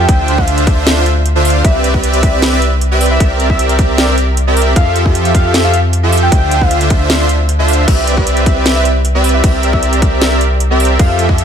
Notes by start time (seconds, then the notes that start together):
0.00 G5
0.09 D2 D3 D4 F4 C5 E5, kick, closed hi-hat
0.28 closed hi-hat
0.38 F4 E5 F5, kick
0.48 closed hi-hat
0.58 closed hi-hat
0.67 D3 D4 F4 C5 E5, kick, closed hi-hat
0.87 snare, closed hi-hat
0.97 D3 D4 F4 C5 E5
1.06 closed hi-hat
1.26 closed hi-hat
1.35 D3 D4 F4 C5 E5
1.45 D3 D4 F4 C5 F5, open hi-hat
1.50 closed hi-hat
1.64 C2 C4 G4 B4 D5 E5, kick, closed hi-hat
1.84 closed hi-hat
1.94 C4 G4, kick
2.04 closed hi-hat
2.14 closed hi-hat
2.23 C4 G4 B4 D5 E5, kick, closed hi-hat
2.42 snare, closed hi-hat
2.52 C4 G4 B4 D5 E5
2.62 closed hi-hat
2.81 closed hi-hat
2.91 C4 G4 B4 D5 E5
3.01 open hi-hat
3.06 closed hi-hat
3.11 E5
3.20 C2 C4 G4 A#4 D5 E5, kick, closed hi-hat
3.40 closed hi-hat
3.50 C4 G4 A#4 E5, kick
3.59 closed hi-hat
3.69 closed hi-hat
3.79 G4 D5 E5, kick, closed hi-hat
3.98 snare, closed hi-hat
4.08 C4 G4 A#4 D5 E5
4.18 closed hi-hat
4.37 closed hi-hat
4.47 C4 G4 A#4 D5 E5
4.57 open hi-hat
4.62 closed hi-hat
4.76 F2 F3 F4 G4 A4 E5 F5, kick, closed hi-hat
4.96 closed hi-hat
5.06 F3 F4 G4 A4 E5, kick
5.15 closed hi-hat
5.25 closed hi-hat
5.35 F3 F4 F5, kick, closed hi-hat
5.54 snare, closed hi-hat
5.64 F3 F4 G4 A4 E5 F5
5.74 closed hi-hat
5.93 closed hi-hat
6.03 F3 F4 G4 A4 E5
6.13 open hi-hat
6.18 closed hi-hat
6.23 G5
6.32 D2 D3 D4 F4 C5 E5, kick, closed hi-hat
6.51 closed hi-hat
6.61 D3 D4 F4 C5 E5 F5, kick
6.71 closed hi-hat
6.81 closed hi-hat
6.90 D3 D4 F4 C5 E5, kick, closed hi-hat
7.10 snare, closed hi-hat
7.20 D3 D4 F4 C5 E5
7.29 closed hi-hat
7.49 closed hi-hat
7.59 D3 D4 F4 C5 E5
7.68 open hi-hat
7.73 closed hi-hat
7.88 C2 G4 E5, kick, closed hi-hat, crash
8.07 closed hi-hat
8.17 C4 G4 B4 D5 E5, kick
8.27 closed hi-hat
8.37 closed hi-hat
8.46 C4 E5, kick, closed hi-hat
8.66 snare, closed hi-hat
8.76 C4 G4 B4 D5 E5
8.85 closed hi-hat
9.05 closed hi-hat
9.15 C4 G4 B4 D5 E5
9.24 open hi-hat
9.29 closed hi-hat
9.34 E5
9.44 C2 C4 G4 A#4 E5, kick, closed hi-hat, crash
9.63 closed hi-hat
9.73 C4 G4 A#4 D5 E5, kick
9.83 closed hi-hat
9.93 closed hi-hat
10.02 C4 A#4 D5 E5, kick, closed hi-hat
10.22 snare, closed hi-hat
10.31 C4 G4 A#4 D5 E5
10.41 closed hi-hat
10.60 closed hi-hat
10.70 C4 G4 A#4 D5 E5
10.80 open hi-hat
10.85 closed hi-hat
10.99 F2 F3 F4 F5, kick, closed hi-hat, crash
11.19 closed hi-hat
11.29 F3 F4, kick
11.38 closed hi-hat